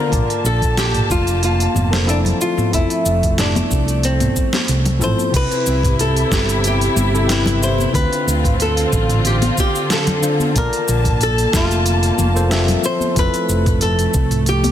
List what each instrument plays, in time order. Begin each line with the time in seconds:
Already playing: tine electric piano D3 D4 F4 C5, string section D3, nylon-string guitar A#4
0.09 fingered electric bass A#1, tine electric piano A#3 F4 A5, string section A#3, kick, mid tom, open hi-hat
0.13 tine electric piano D5, string section A5, shaker
0.30 open hi-hat
0.44 fingered electric bass A#1, nylon-string guitar A4, shaker
0.62 kick, open hi-hat, shaker
0.77 nylon-string guitar G4, snare, open hi-hat, shaker
0.94 mid tom, open hi-hat
1.10 fingered electric bass F1, nylon-string guitar F4, kick, shaker
1.27 open hi-hat, shaker
1.43 nylon-string guitar F4, open hi-hat, shaker
1.60 open hi-hat, shaker
1.75 fingered electric bass F1, mid tom, high conga, shaker
1.90 tine electric piano A#3 F4 A4 C5, snare, shaker
2.06 tine electric piano F3 C4 E4 A4, nylon-string guitar D4, open hi-hat, shaker
2.25 open hi-hat, low conga
2.40 string section A3, nylon-string guitar F4, shaker
2.58 mid tom, high conga, shaker
2.70 fingered electric bass F1, tine electric piano F3 C4 E4, nylon-string guitar E4, kick, open hi-hat, shaker
2.75 tine electric piano A4
2.90 open hi-hat, shaker
3.06 fingered electric bass F1, shaker
3.23 kick, open hi-hat, shaker
3.38 nylon-string guitar D4, snare, mid tom, open hi-hat, shaker
3.56 open hi-hat, high conga, low conga, shaker
3.71 fingered electric bass C2, kick, shaker
3.88 open hi-hat, shaker
4.03 nylon-string guitar C4, open hi-hat, shaker
4.20 mid tom, open hi-hat, high conga, shaker
4.36 kick, shaker
4.53 snare, high conga, shaker
4.68 fingered electric bass C2, open hi-hat, shaker
4.85 open hi-hat, low conga, shaker
4.99 fingered electric bass A1, tine electric piano F3 C4 E4 A4, mid tom, shaker
5.04 nylon-string guitar C5
5.18 high conga, shaker
5.30 fingered electric bass C2, tine electric piano C3 C4 E4, string section E4 G4, kick, open hi-hat, crash
5.34 string section C3, tine electric piano B4, nylon-string guitar B4, shaker
5.51 open hi-hat, shaker
5.67 fingered electric bass C2, shaker
5.83 kick, mid tom, open hi-hat, shaker
5.99 nylon-string guitar A4, open hi-hat, shaker
6.17 open hi-hat, shaker
6.31 fingered electric bass G1, kick, snare, shaker
6.49 open hi-hat, shaker
6.64 nylon-string guitar G4, open hi-hat, shaker
6.81 open hi-hat, shaker
6.96 fingered electric bass G1, high conga, shaker
7.12 tine electric piano C3 C4 E4 A4, shaker
7.27 tine electric piano C3 C4 E4 B4, snare, open hi-hat, shaker
7.32 nylon-string guitar E4
7.46 open hi-hat, low conga, shaker
7.63 nylon-string guitar C5, shaker
7.78 high conga, shaker
7.92 fingered electric bass D2, tine electric piano D3 D4 F4, string section D3 C4 F4, nylon-string guitar B4, kick, open hi-hat, shaker
7.97 tine electric piano C4
8.13 open hi-hat, shaker
8.27 fingered electric bass D2, shaker
8.45 kick, mid tom, open hi-hat, shaker
8.60 nylon-string guitar A4, open hi-hat, shaker
8.77 open hi-hat, shaker
8.93 fingered electric bass A1, kick, shaker
9.10 mid tom, open hi-hat, shaker
9.25 nylon-string guitar G4, open hi-hat, shaker
9.42 open hi-hat, high conga, shaker
9.58 nylon-string guitar G4, kick, shaker
9.75 shaker
9.90 nylon-string guitar A4, snare, open hi-hat, shaker
10.07 open hi-hat, low conga, shaker
10.21 tine electric piano D3 D4 F4 C5, shaker
10.40 high conga, shaker
10.53 fingered electric bass A#1, tine electric piano A#3 F4 A5, string section A#3 A5, kick, open hi-hat, shaker
10.57 nylon-string guitar A#4, tine electric piano D5
10.73 open hi-hat, shaker
10.88 fingered electric bass A#1, shaker
11.05 kick, mid tom, open hi-hat, shaker
11.21 nylon-string guitar A4, open hi-hat, shaker
11.38 open hi-hat, shaker
11.53 fingered electric bass F1, nylon-string guitar F4, kick, snare, shaker
11.71 open hi-hat, shaker
11.86 open hi-hat, shaker
12.03 open hi-hat, shaker
12.18 fingered electric bass F1, high conga, shaker
12.34 tine electric piano A#3 F4 A4 C5, shaker
12.49 tine electric piano F3 C4 A4 E5, snare, open hi-hat, shaker
12.68 open hi-hat, low conga, shaker
12.83 string section A3, nylon-string guitar C5, shaker
13.00 high conga, shaker
13.14 fingered electric bass F1, tine electric piano F3 C4 E4, kick, open hi-hat, shaker
13.19 tine electric piano A4, nylon-string guitar B4
13.34 open hi-hat, shaker
13.49 fingered electric bass F1, shaker
13.66 kick, mid tom, open hi-hat, shaker
13.81 nylon-string guitar A4, open hi-hat, shaker
13.99 open hi-hat, shaker
14.14 fingered electric bass C2, kick, shaker
14.31 mid tom, open hi-hat, shaker
14.46 nylon-string guitar G4, open hi-hat, shaker
14.64 open hi-hat, high conga, shaker